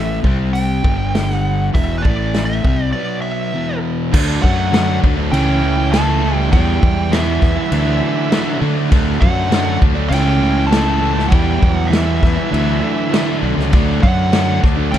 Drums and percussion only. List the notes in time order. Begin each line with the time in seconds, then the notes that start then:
0.24 kick
0.55 open hi-hat
0.84 kick
1.15 snare, open hi-hat
1.30 snare
1.75 kick, open hi-hat
2.05 kick
2.34 snare, open hi-hat
2.65 kick
4.14 kick, crash
4.44 kick
4.74 snare, crash
5.04 kick
5.34 crash
5.94 snare, crash
6.53 kick, crash
6.83 kick
7.13 snare, crash
7.42 kick, snare
7.72 crash
8.32 snare, crash
8.92 kick, crash
9.22 kick
9.52 snare, crash
9.82 kick
10.12 crash
10.72 snare, crash
11.19 snare
11.32 kick, crash
11.63 kick
11.93 snare, crash
12.23 kick, snare
12.54 crash
13.14 snare, crash
13.59 snare
13.73 kick, crash
14.03 kick
14.33 snare, crash
14.64 kick, snare
14.94 crash